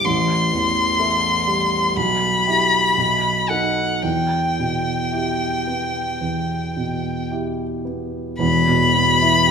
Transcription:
0.04 1.93 A1 soft
0.04 1.97 C6 medium
0.53 1.29 E2 soft
0.99 1.43 E4 soft
0.99 1.44 A4 soft
1.47 1.96 G3 soft
1.96 2.95 B1 soft
1.96 3.50 B5 medium
2.47 2.94 E4 soft
2.47 2.94 G4 soft
2.97 4.01 B1 soft
3.49 4.00 D#4 soft
3.49 4.00 A4 soft
3.49 4.04 F#5 medium
4.02 6.18 E2 soft
4.02 7.30 G5 soft
4.59 5.46 B2 soft
5.12 5.63 E4 soft
5.12 5.63 G4 soft
5.67 6.55 B3 soft
6.21 8.35 E2 soft
6.76 7.63 B2 soft
7.31 7.81 E4 soft
7.31 7.82 G4 soft
7.85 8.40 B3 soft
8.39 9.51 E1 soft
8.39 9.51 E2 medium
8.39 9.51 B5 medium
8.67 9.10 B2 soft
8.94 9.37 B3 soft
9.22 9.51 E4 soft
9.47 9.51 G4 soft

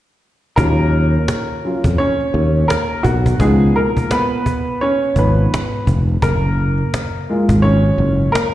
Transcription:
0.56 1.17 D#2 medium
0.56 1.63 F#3 soft
0.56 1.95 A#3 medium
0.56 1.63 C#4 soft
0.56 1.64 F4 medium
0.56 2.02 A#4 medium
0.56 cajon bass loud
1.13 cajon slap soft
1.28 cajon slap loud
1.65 1.96 F#3 soft
1.65 1.96 C#4 soft
1.65 1.96 F4 soft
1.84 1.96 F2 medium
1.84 cajon bass medium
1.98 2.66 C#4 medium
1.98 2.71 C#5 medium
1.98 cajon slap soft
2.21 cajon slap soft
2.34 2.63 D#2 medium
2.56 cajon slap soft
2.68 3.02 A#3 medium
2.68 3.01 A#4 medium
2.68 cajon slap loud
3.03 3.34 B1 medium
3.03 3.38 F#3 medium
3.03 3.40 F#4 medium
3.03 cajon bass medium
3.03 cajon slap soft
3.26 cajon bass medium
3.39 3.69 C#2 medium
3.39 4.42 F3 medium
3.39 3.74 G#3 medium
3.39 4.11 B3 soft
3.39 4.43 D#4 medium
3.39 3.73 G#4 medium
3.39 cajon bass loud
3.76 4.09 A#3 medium
3.76 4.12 A#4 medium
3.97 cajon bass medium
4.11 4.78 B3 medium
4.11 4.83 B4 medium
4.11 cajon slap medium
4.46 cajon bass medium
4.67 cajon slap soft
4.81 5.14 C#4 medium
4.81 5.17 C#5 medium
4.81 cajon slap soft
5.03 cajon slap soft
5.16 5.46 G#1 medium
5.16 5.49 F3 soft
5.16 5.84 B3 medium
5.16 5.49 D#4 soft
5.16 5.84 B4 medium
5.16 cajon bass medium
5.39 cajon slap soft
5.54 cajon slap loud
5.87 6.16 F1 medium
5.87 cajon bass medium
5.87 cajon slap soft
6.09 cajon slap soft
6.22 6.81 F#1 medium
6.22 7.28 A#3 medium
6.22 7.68 A#4 medium
6.22 cajon bass loud
6.78 cajon slap soft
6.94 cajon slap loud
7.30 8.54 G#3 soft
7.30 8.34 A#3 soft
7.30 8.54 F4 medium
7.49 7.90 G#1 medium
7.49 cajon bass loud
7.62 8.30 C#4 medium
7.62 8.35 C#5 medium
7.62 cajon slap soft
7.86 cajon slap soft
7.98 8.28 F#1 medium
8.21 cajon slap soft
8.32 8.54 A#3 medium
8.32 8.54 A#4 medium
8.32 cajon slap loud

